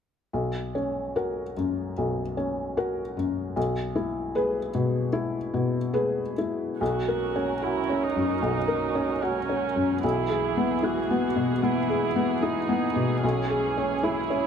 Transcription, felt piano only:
0, 0, Header, 1, 2, 480
1, 0, Start_track
1, 0, Tempo, 814111
1, 200, Time_signature, 4, 2, 24, 8
1, 1637, Tempo, 783290
1, 3077, Tempo, 834492
1, 4517, Tempo, 801068
1, 8614, End_track
2, 0, Start_track
2, 0, Title_t, "Felt piano"
2, 0, Program_c, 0, 0
2, 197, Note_on_c, 0, 35, 32
2, 296, Control_c, 0, 64, 127
2, 442, Note_on_c, 0, 61, 25
2, 683, Note_on_c, 0, 66, 22
2, 684, Note_on_c, 0, 70, 25
2, 828, Note_off_c, 0, 61, 0
2, 901, Note_off_c, 0, 66, 0
2, 902, Note_off_c, 0, 70, 0
2, 924, Note_on_c, 0, 42, 25
2, 1139, Note_off_c, 0, 35, 0
2, 1166, Note_on_c, 0, 35, 27
2, 1307, Note_off_c, 0, 42, 0
2, 1398, Note_on_c, 0, 61, 24
2, 1634, Note_on_c, 0, 66, 29
2, 1636, Note_on_c, 0, 70, 29
2, 1780, Note_off_c, 0, 61, 0
2, 1853, Note_off_c, 0, 66, 0
2, 1854, Note_off_c, 0, 70, 0
2, 1877, Note_on_c, 0, 42, 27
2, 2095, Note_off_c, 0, 35, 0
2, 2118, Note_off_c, 0, 42, 0
2, 2118, Note_on_c, 0, 35, 39
2, 2131, Control_c, 0, 64, 0
2, 2228, Control_c, 0, 64, 127
2, 2359, Note_on_c, 0, 64, 29
2, 2602, Note_on_c, 0, 68, 30
2, 2605, Note_on_c, 0, 71, 32
2, 2741, Note_off_c, 0, 64, 0
2, 2815, Note_off_c, 0, 68, 0
2, 2817, Note_off_c, 0, 71, 0
2, 2842, Note_on_c, 0, 47, 31
2, 3053, Note_off_c, 0, 35, 0
2, 3077, Note_on_c, 0, 64, 33
2, 3218, Note_off_c, 0, 47, 0
2, 3313, Note_on_c, 0, 47, 31
2, 3449, Note_off_c, 0, 64, 0
2, 3542, Note_on_c, 0, 68, 32
2, 3545, Note_on_c, 0, 71, 35
2, 3694, Note_off_c, 0, 47, 0
2, 3769, Note_off_c, 0, 68, 0
2, 3770, Note_off_c, 0, 71, 0
2, 3798, Note_on_c, 0, 64, 28
2, 4045, Note_off_c, 0, 64, 0
2, 4045, Note_on_c, 0, 35, 37
2, 4053, Control_c, 0, 64, 0
2, 4142, Control_c, 0, 64, 127
2, 4202, Note_on_c, 0, 70, 29
2, 4360, Note_on_c, 0, 61, 27
2, 4455, Note_off_c, 0, 70, 0
2, 4513, Note_on_c, 0, 66, 27
2, 4613, Note_off_c, 0, 61, 0
2, 4676, Note_on_c, 0, 61, 25
2, 4771, Note_off_c, 0, 66, 0
2, 4833, Note_on_c, 0, 42, 27
2, 4930, Note_off_c, 0, 61, 0
2, 4971, Note_off_c, 0, 35, 0
2, 4990, Note_on_c, 0, 35, 31
2, 5087, Note_off_c, 0, 42, 0
2, 5146, Note_on_c, 0, 70, 29
2, 5309, Note_on_c, 0, 61, 26
2, 5404, Note_off_c, 0, 70, 0
2, 5470, Note_on_c, 0, 66, 30
2, 5566, Note_off_c, 0, 61, 0
2, 5633, Note_on_c, 0, 61, 27
2, 5728, Note_off_c, 0, 66, 0
2, 5790, Note_on_c, 0, 42, 26
2, 5892, Note_off_c, 0, 61, 0
2, 5931, Note_off_c, 0, 35, 0
2, 5956, Note_off_c, 0, 42, 0
2, 5958, Note_on_c, 0, 35, 35
2, 5967, Control_c, 0, 64, 0
2, 6082, Control_c, 0, 64, 127
2, 6114, Note_on_c, 0, 68, 30
2, 6279, Note_on_c, 0, 59, 26
2, 6375, Note_off_c, 0, 68, 0
2, 6434, Note_on_c, 0, 64, 28
2, 6535, Note_off_c, 0, 59, 0
2, 6599, Note_on_c, 0, 59, 29
2, 6690, Note_off_c, 0, 64, 0
2, 6753, Note_on_c, 0, 47, 27
2, 6851, Note_off_c, 0, 59, 0
2, 6891, Note_off_c, 0, 35, 0
2, 6911, Note_on_c, 0, 59, 31
2, 7006, Note_off_c, 0, 47, 0
2, 7072, Note_on_c, 0, 68, 31
2, 7165, Note_off_c, 0, 59, 0
2, 7230, Note_on_c, 0, 59, 29
2, 7325, Note_off_c, 0, 68, 0
2, 7391, Note_on_c, 0, 64, 33
2, 7485, Note_off_c, 0, 59, 0
2, 7547, Note_on_c, 0, 59, 31
2, 7648, Note_off_c, 0, 64, 0
2, 7708, Note_on_c, 0, 47, 29
2, 7808, Note_off_c, 0, 59, 0
2, 7872, Note_off_c, 0, 47, 0
2, 7876, Note_on_c, 0, 35, 42
2, 7886, Control_c, 0, 64, 0
2, 7975, Control_c, 0, 64, 127
2, 8036, Note_on_c, 0, 68, 31
2, 8199, Note_on_c, 0, 61, 30
2, 8292, Note_off_c, 0, 68, 0
2, 8353, Note_on_c, 0, 64, 30
2, 8453, Note_off_c, 0, 61, 0
2, 8515, Note_on_c, 0, 61, 28
2, 8610, Note_off_c, 0, 64, 0
2, 8614, Note_off_c, 0, 35, 0
2, 8614, Note_off_c, 0, 61, 0
2, 8614, End_track
0, 0, End_of_file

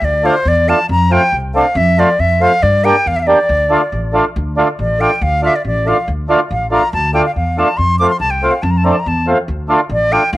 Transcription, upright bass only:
0, 0, Header, 1, 2, 480
1, 0, Start_track
1, 0, Key_signature, -1, "minor"
1, 0, Tempo, 432900
1, 24, Time_signature, 2, 2, 24, 8
1, 6264, Tempo, 425834
1, 11585, End_track
2, 0, Start_track
2, 0, Title_t, "Upright bass"
2, 0, Program_c, 0, 32
2, 15, Note_on_c, 0, 38, 81
2, 308, Note_off_c, 0, 38, 0
2, 501, Note_on_c, 0, 40, 85
2, 792, Note_off_c, 0, 40, 0
2, 988, Note_on_c, 0, 41, 90
2, 1278, Note_off_c, 0, 41, 0
2, 1468, Note_on_c, 0, 36, 77
2, 1758, Note_off_c, 0, 36, 0
2, 1943, Note_on_c, 0, 41, 97
2, 2235, Note_off_c, 0, 41, 0
2, 2430, Note_on_c, 0, 41, 71
2, 2720, Note_off_c, 0, 41, 0
2, 2914, Note_on_c, 0, 43, 100
2, 3203, Note_off_c, 0, 43, 0
2, 3395, Note_on_c, 0, 40, 79
2, 3683, Note_off_c, 0, 40, 0
2, 3872, Note_on_c, 0, 38, 84
2, 4160, Note_off_c, 0, 38, 0
2, 4349, Note_on_c, 0, 33, 76
2, 4637, Note_off_c, 0, 33, 0
2, 4835, Note_on_c, 0, 38, 89
2, 5120, Note_off_c, 0, 38, 0
2, 5310, Note_on_c, 0, 33, 83
2, 5596, Note_off_c, 0, 33, 0
2, 5782, Note_on_c, 0, 38, 93
2, 6069, Note_off_c, 0, 38, 0
2, 6260, Note_on_c, 0, 33, 79
2, 6551, Note_off_c, 0, 33, 0
2, 6746, Note_on_c, 0, 38, 85
2, 7035, Note_off_c, 0, 38, 0
2, 7229, Note_on_c, 0, 33, 79
2, 7518, Note_off_c, 0, 33, 0
2, 7706, Note_on_c, 0, 38, 95
2, 7996, Note_off_c, 0, 38, 0
2, 8191, Note_on_c, 0, 40, 68
2, 8480, Note_off_c, 0, 40, 0
2, 8669, Note_on_c, 0, 41, 77
2, 8958, Note_off_c, 0, 41, 0
2, 9137, Note_on_c, 0, 36, 74
2, 9429, Note_off_c, 0, 36, 0
2, 9622, Note_on_c, 0, 41, 94
2, 9913, Note_off_c, 0, 41, 0
2, 10110, Note_on_c, 0, 40, 78
2, 10397, Note_off_c, 0, 40, 0
2, 10582, Note_on_c, 0, 38, 83
2, 10871, Note_off_c, 0, 38, 0
2, 11049, Note_on_c, 0, 33, 82
2, 11340, Note_off_c, 0, 33, 0
2, 11537, Note_on_c, 0, 38, 101
2, 11585, Note_off_c, 0, 38, 0
2, 11585, End_track
0, 0, End_of_file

